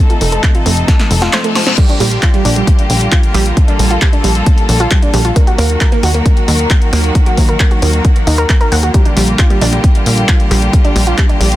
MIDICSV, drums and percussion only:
0, 0, Header, 1, 2, 480
1, 0, Start_track
1, 0, Key_signature, -2, "major"
1, 0, Tempo, 447761
1, 1906, Time_signature, 4, 2, 24, 8
1, 12392, End_track
2, 0, Start_track
2, 0, Title_t, "Drums"
2, 106, Note_on_c, 9, 42, 40
2, 214, Note_off_c, 9, 42, 0
2, 226, Note_on_c, 9, 46, 104
2, 333, Note_off_c, 9, 46, 0
2, 346, Note_on_c, 9, 42, 39
2, 453, Note_off_c, 9, 42, 0
2, 466, Note_on_c, 9, 36, 112
2, 466, Note_on_c, 9, 39, 122
2, 466, Note_on_c, 9, 42, 97
2, 573, Note_off_c, 9, 36, 0
2, 573, Note_off_c, 9, 39, 0
2, 573, Note_off_c, 9, 42, 0
2, 586, Note_on_c, 9, 42, 39
2, 694, Note_off_c, 9, 42, 0
2, 706, Note_on_c, 9, 46, 88
2, 814, Note_off_c, 9, 46, 0
2, 826, Note_on_c, 9, 42, 41
2, 934, Note_off_c, 9, 42, 0
2, 946, Note_on_c, 9, 36, 110
2, 946, Note_on_c, 9, 38, 60
2, 946, Note_on_c, 9, 42, 96
2, 1053, Note_off_c, 9, 36, 0
2, 1053, Note_off_c, 9, 38, 0
2, 1053, Note_off_c, 9, 42, 0
2, 1066, Note_on_c, 9, 38, 57
2, 1066, Note_on_c, 9, 42, 42
2, 1174, Note_off_c, 9, 38, 0
2, 1174, Note_off_c, 9, 42, 0
2, 1187, Note_on_c, 9, 46, 101
2, 1294, Note_off_c, 9, 46, 0
2, 1307, Note_on_c, 9, 38, 68
2, 1415, Note_off_c, 9, 38, 0
2, 1426, Note_on_c, 9, 38, 86
2, 1426, Note_on_c, 9, 39, 120
2, 1426, Note_on_c, 9, 42, 95
2, 1533, Note_off_c, 9, 38, 0
2, 1533, Note_off_c, 9, 39, 0
2, 1533, Note_off_c, 9, 42, 0
2, 1546, Note_on_c, 9, 42, 42
2, 1654, Note_off_c, 9, 42, 0
2, 1667, Note_on_c, 9, 38, 98
2, 1667, Note_on_c, 9, 46, 90
2, 1774, Note_off_c, 9, 38, 0
2, 1774, Note_off_c, 9, 46, 0
2, 1786, Note_on_c, 9, 38, 90
2, 1894, Note_off_c, 9, 38, 0
2, 1906, Note_on_c, 9, 36, 117
2, 1906, Note_on_c, 9, 42, 98
2, 1906, Note_on_c, 9, 49, 76
2, 2013, Note_off_c, 9, 36, 0
2, 2014, Note_off_c, 9, 42, 0
2, 2014, Note_off_c, 9, 49, 0
2, 2027, Note_on_c, 9, 42, 41
2, 2134, Note_off_c, 9, 42, 0
2, 2147, Note_on_c, 9, 46, 108
2, 2254, Note_off_c, 9, 46, 0
2, 2267, Note_on_c, 9, 42, 40
2, 2374, Note_off_c, 9, 42, 0
2, 2386, Note_on_c, 9, 36, 117
2, 2386, Note_on_c, 9, 39, 121
2, 2386, Note_on_c, 9, 42, 97
2, 2493, Note_off_c, 9, 36, 0
2, 2494, Note_off_c, 9, 39, 0
2, 2494, Note_off_c, 9, 42, 0
2, 2507, Note_on_c, 9, 42, 42
2, 2615, Note_off_c, 9, 42, 0
2, 2627, Note_on_c, 9, 46, 95
2, 2735, Note_off_c, 9, 46, 0
2, 2747, Note_on_c, 9, 42, 40
2, 2855, Note_off_c, 9, 42, 0
2, 2866, Note_on_c, 9, 36, 116
2, 2867, Note_on_c, 9, 42, 98
2, 2973, Note_off_c, 9, 36, 0
2, 2974, Note_off_c, 9, 42, 0
2, 2987, Note_on_c, 9, 42, 42
2, 3094, Note_off_c, 9, 42, 0
2, 3106, Note_on_c, 9, 46, 105
2, 3214, Note_off_c, 9, 46, 0
2, 3227, Note_on_c, 9, 42, 42
2, 3334, Note_off_c, 9, 42, 0
2, 3346, Note_on_c, 9, 36, 117
2, 3346, Note_on_c, 9, 39, 122
2, 3346, Note_on_c, 9, 42, 94
2, 3453, Note_off_c, 9, 36, 0
2, 3454, Note_off_c, 9, 39, 0
2, 3454, Note_off_c, 9, 42, 0
2, 3466, Note_on_c, 9, 42, 43
2, 3574, Note_off_c, 9, 42, 0
2, 3586, Note_on_c, 9, 46, 92
2, 3693, Note_off_c, 9, 46, 0
2, 3707, Note_on_c, 9, 42, 44
2, 3814, Note_off_c, 9, 42, 0
2, 3826, Note_on_c, 9, 36, 122
2, 3826, Note_on_c, 9, 42, 92
2, 3933, Note_off_c, 9, 36, 0
2, 3933, Note_off_c, 9, 42, 0
2, 3947, Note_on_c, 9, 42, 38
2, 4054, Note_off_c, 9, 42, 0
2, 4067, Note_on_c, 9, 46, 112
2, 4174, Note_off_c, 9, 46, 0
2, 4186, Note_on_c, 9, 42, 38
2, 4294, Note_off_c, 9, 42, 0
2, 4306, Note_on_c, 9, 36, 119
2, 4306, Note_on_c, 9, 39, 127
2, 4306, Note_on_c, 9, 42, 95
2, 4413, Note_off_c, 9, 36, 0
2, 4414, Note_off_c, 9, 39, 0
2, 4414, Note_off_c, 9, 42, 0
2, 4427, Note_on_c, 9, 42, 39
2, 4534, Note_off_c, 9, 42, 0
2, 4546, Note_on_c, 9, 46, 94
2, 4653, Note_off_c, 9, 46, 0
2, 4666, Note_on_c, 9, 42, 41
2, 4773, Note_off_c, 9, 42, 0
2, 4786, Note_on_c, 9, 36, 123
2, 4786, Note_on_c, 9, 42, 93
2, 4893, Note_off_c, 9, 42, 0
2, 4894, Note_off_c, 9, 36, 0
2, 4906, Note_on_c, 9, 42, 41
2, 5013, Note_off_c, 9, 42, 0
2, 5026, Note_on_c, 9, 46, 109
2, 5133, Note_off_c, 9, 46, 0
2, 5146, Note_on_c, 9, 42, 39
2, 5253, Note_off_c, 9, 42, 0
2, 5266, Note_on_c, 9, 36, 118
2, 5266, Note_on_c, 9, 39, 125
2, 5266, Note_on_c, 9, 42, 95
2, 5373, Note_off_c, 9, 39, 0
2, 5373, Note_off_c, 9, 42, 0
2, 5374, Note_off_c, 9, 36, 0
2, 5386, Note_on_c, 9, 42, 40
2, 5494, Note_off_c, 9, 42, 0
2, 5506, Note_on_c, 9, 46, 97
2, 5613, Note_off_c, 9, 46, 0
2, 5626, Note_on_c, 9, 42, 41
2, 5733, Note_off_c, 9, 42, 0
2, 5746, Note_on_c, 9, 36, 126
2, 5746, Note_on_c, 9, 42, 93
2, 5854, Note_off_c, 9, 36, 0
2, 5854, Note_off_c, 9, 42, 0
2, 5867, Note_on_c, 9, 42, 37
2, 5974, Note_off_c, 9, 42, 0
2, 5987, Note_on_c, 9, 46, 109
2, 6094, Note_off_c, 9, 46, 0
2, 6107, Note_on_c, 9, 42, 37
2, 6214, Note_off_c, 9, 42, 0
2, 6226, Note_on_c, 9, 39, 122
2, 6226, Note_on_c, 9, 42, 89
2, 6227, Note_on_c, 9, 36, 121
2, 6333, Note_off_c, 9, 39, 0
2, 6333, Note_off_c, 9, 42, 0
2, 6334, Note_off_c, 9, 36, 0
2, 6346, Note_on_c, 9, 42, 38
2, 6454, Note_off_c, 9, 42, 0
2, 6466, Note_on_c, 9, 46, 96
2, 6574, Note_off_c, 9, 46, 0
2, 6587, Note_on_c, 9, 42, 38
2, 6694, Note_off_c, 9, 42, 0
2, 6707, Note_on_c, 9, 36, 121
2, 6707, Note_on_c, 9, 42, 90
2, 6814, Note_off_c, 9, 36, 0
2, 6814, Note_off_c, 9, 42, 0
2, 6827, Note_on_c, 9, 42, 38
2, 6934, Note_off_c, 9, 42, 0
2, 6947, Note_on_c, 9, 46, 113
2, 7054, Note_off_c, 9, 46, 0
2, 7067, Note_on_c, 9, 42, 38
2, 7174, Note_off_c, 9, 42, 0
2, 7187, Note_on_c, 9, 36, 122
2, 7187, Note_on_c, 9, 39, 120
2, 7187, Note_on_c, 9, 42, 88
2, 7294, Note_off_c, 9, 36, 0
2, 7294, Note_off_c, 9, 39, 0
2, 7294, Note_off_c, 9, 42, 0
2, 7307, Note_on_c, 9, 42, 39
2, 7414, Note_off_c, 9, 42, 0
2, 7427, Note_on_c, 9, 46, 100
2, 7534, Note_off_c, 9, 46, 0
2, 7547, Note_on_c, 9, 42, 40
2, 7654, Note_off_c, 9, 42, 0
2, 7666, Note_on_c, 9, 42, 88
2, 7667, Note_on_c, 9, 36, 118
2, 7773, Note_off_c, 9, 42, 0
2, 7774, Note_off_c, 9, 36, 0
2, 7786, Note_on_c, 9, 42, 37
2, 7894, Note_off_c, 9, 42, 0
2, 7906, Note_on_c, 9, 36, 63
2, 7906, Note_on_c, 9, 46, 109
2, 8013, Note_off_c, 9, 46, 0
2, 8014, Note_off_c, 9, 36, 0
2, 8026, Note_on_c, 9, 42, 36
2, 8133, Note_off_c, 9, 42, 0
2, 8146, Note_on_c, 9, 36, 122
2, 8146, Note_on_c, 9, 39, 117
2, 8146, Note_on_c, 9, 42, 88
2, 8253, Note_off_c, 9, 39, 0
2, 8253, Note_off_c, 9, 42, 0
2, 8254, Note_off_c, 9, 36, 0
2, 8266, Note_on_c, 9, 42, 36
2, 8373, Note_off_c, 9, 42, 0
2, 8386, Note_on_c, 9, 46, 93
2, 8493, Note_off_c, 9, 46, 0
2, 8505, Note_on_c, 9, 42, 38
2, 8612, Note_off_c, 9, 42, 0
2, 8626, Note_on_c, 9, 36, 120
2, 8626, Note_on_c, 9, 42, 86
2, 8733, Note_off_c, 9, 36, 0
2, 8733, Note_off_c, 9, 42, 0
2, 8746, Note_on_c, 9, 42, 37
2, 8853, Note_off_c, 9, 42, 0
2, 8866, Note_on_c, 9, 46, 108
2, 8973, Note_off_c, 9, 46, 0
2, 8987, Note_on_c, 9, 42, 37
2, 9094, Note_off_c, 9, 42, 0
2, 9106, Note_on_c, 9, 36, 119
2, 9107, Note_on_c, 9, 39, 114
2, 9107, Note_on_c, 9, 42, 86
2, 9213, Note_off_c, 9, 36, 0
2, 9214, Note_off_c, 9, 39, 0
2, 9214, Note_off_c, 9, 42, 0
2, 9226, Note_on_c, 9, 42, 38
2, 9334, Note_off_c, 9, 42, 0
2, 9346, Note_on_c, 9, 46, 93
2, 9454, Note_off_c, 9, 46, 0
2, 9467, Note_on_c, 9, 42, 39
2, 9574, Note_off_c, 9, 42, 0
2, 9586, Note_on_c, 9, 36, 117
2, 9586, Note_on_c, 9, 42, 91
2, 9693, Note_off_c, 9, 36, 0
2, 9693, Note_off_c, 9, 42, 0
2, 9706, Note_on_c, 9, 42, 36
2, 9814, Note_off_c, 9, 42, 0
2, 9826, Note_on_c, 9, 46, 111
2, 9934, Note_off_c, 9, 46, 0
2, 9946, Note_on_c, 9, 42, 36
2, 10053, Note_off_c, 9, 42, 0
2, 10066, Note_on_c, 9, 36, 117
2, 10066, Note_on_c, 9, 39, 111
2, 10066, Note_on_c, 9, 42, 91
2, 10173, Note_off_c, 9, 36, 0
2, 10173, Note_off_c, 9, 39, 0
2, 10173, Note_off_c, 9, 42, 0
2, 10187, Note_on_c, 9, 42, 37
2, 10294, Note_off_c, 9, 42, 0
2, 10307, Note_on_c, 9, 46, 93
2, 10414, Note_off_c, 9, 46, 0
2, 10427, Note_on_c, 9, 42, 39
2, 10534, Note_off_c, 9, 42, 0
2, 10546, Note_on_c, 9, 36, 116
2, 10547, Note_on_c, 9, 42, 87
2, 10653, Note_off_c, 9, 36, 0
2, 10654, Note_off_c, 9, 42, 0
2, 10667, Note_on_c, 9, 42, 39
2, 10774, Note_off_c, 9, 42, 0
2, 10787, Note_on_c, 9, 46, 105
2, 10894, Note_off_c, 9, 46, 0
2, 10907, Note_on_c, 9, 42, 38
2, 11014, Note_off_c, 9, 42, 0
2, 11026, Note_on_c, 9, 36, 115
2, 11027, Note_on_c, 9, 39, 112
2, 11027, Note_on_c, 9, 42, 88
2, 11134, Note_off_c, 9, 36, 0
2, 11134, Note_off_c, 9, 39, 0
2, 11134, Note_off_c, 9, 42, 0
2, 11147, Note_on_c, 9, 42, 38
2, 11254, Note_off_c, 9, 42, 0
2, 11267, Note_on_c, 9, 46, 98
2, 11374, Note_off_c, 9, 46, 0
2, 11387, Note_on_c, 9, 42, 40
2, 11494, Note_off_c, 9, 42, 0
2, 11506, Note_on_c, 9, 36, 115
2, 11507, Note_on_c, 9, 42, 93
2, 11614, Note_off_c, 9, 36, 0
2, 11614, Note_off_c, 9, 42, 0
2, 11627, Note_on_c, 9, 42, 38
2, 11734, Note_off_c, 9, 42, 0
2, 11747, Note_on_c, 9, 46, 105
2, 11854, Note_off_c, 9, 46, 0
2, 11867, Note_on_c, 9, 42, 38
2, 11974, Note_off_c, 9, 42, 0
2, 11986, Note_on_c, 9, 36, 111
2, 11987, Note_on_c, 9, 39, 111
2, 11987, Note_on_c, 9, 42, 93
2, 12094, Note_off_c, 9, 36, 0
2, 12094, Note_off_c, 9, 39, 0
2, 12094, Note_off_c, 9, 42, 0
2, 12107, Note_on_c, 9, 42, 38
2, 12215, Note_off_c, 9, 42, 0
2, 12228, Note_on_c, 9, 46, 90
2, 12335, Note_off_c, 9, 46, 0
2, 12348, Note_on_c, 9, 42, 41
2, 12392, Note_off_c, 9, 42, 0
2, 12392, End_track
0, 0, End_of_file